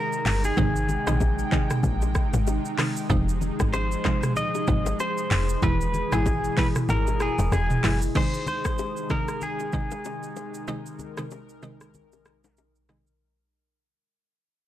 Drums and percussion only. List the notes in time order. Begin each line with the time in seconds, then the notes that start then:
0.13 shaker
0.26 clap, open hi-hat, low bongo, shaker
0.44 shaker
0.57 kick, low conga, shaker
0.76 shaker
0.89 low conga, shaker
1.07 cross-stick, shaker
1.21 kick, high bongo, shaker
1.39 shaker
1.52 kick, clap, high bongo, low bongo, shaker
1.70 cross-stick, mid tom, shaker
1.83 kick, low conga, shaker
2.02 high bongo, shaker
2.15 kick, cross-stick, shaker
2.34 low bongo, shaker
2.47 high bongo, shaker
2.65 shaker
2.78 cross-stick, clap, open hi-hat, low bongo, shaker
2.97 shaker
3.10 kick, low conga, shaker
3.29 shaker
3.41 low conga, shaker
3.60 kick, cross-stick, shaker
3.73 high bongo, shaker
3.92 shaker
4.05 kick, cross-stick, clap, high bongo, low bongo, shaker
4.23 cross-stick, mid tom, shaker
4.36 low conga, shaker
4.55 high bongo, shaker
4.67 kick, shaker
4.86 low bongo, shaker
5.00 high bongo, shaker
5.18 shaker
5.31 clap, open hi-hat, low bongo, shaker
5.49 shaker
5.62 kick, low conga, shaker
5.81 shaker
5.94 low conga, shaker
6.12 cross-stick, shaker
6.26 kick, high bongo, shaker
6.44 shaker
6.57 kick, clap, open hi-hat, high bongo, low bongo, shaker
6.76 cross-stick, mid tom, shaker
6.89 low conga, shaker
7.07 high bongo, shaker
7.20 cross-stick, shaker
7.39 low bongo, shaker
7.52 cross-stick, high bongo, shaker
7.70 mid tom, shaker
7.84 cross-stick, clap, open hi-hat, low bongo, shaker
8.02 shaker
8.15 kick, crash, low conga, shaker
8.34 shaker
8.47 low conga, shaker
8.65 kick, cross-stick, shaker
8.78 high bongo, shaker
8.97 shaker
9.10 kick, cross-stick, high bongo, low bongo, shaker
9.28 cross-stick, shaker
9.41 low conga, shaker
9.60 high bongo, shaker
9.73 kick, shaker
9.91 low bongo, shaker
10.05 high bongo, shaker
10.23 shaker
10.36 low bongo, shaker
10.54 shaker
10.68 low conga, shaker
10.86 shaker
10.99 low conga, shaker
11.17 cross-stick, shaker
11.31 high bongo, shaker
11.49 shaker
11.63 high bongo, low bongo, shaker
11.81 cross-stick, shaker
11.94 low conga, shaker
12.12 high bongo, shaker
12.25 cross-stick, shaker
12.44 low bongo, shaker
12.57 high bongo, shaker
12.76 shaker
12.89 cross-stick, low bongo, shaker
13.07 shaker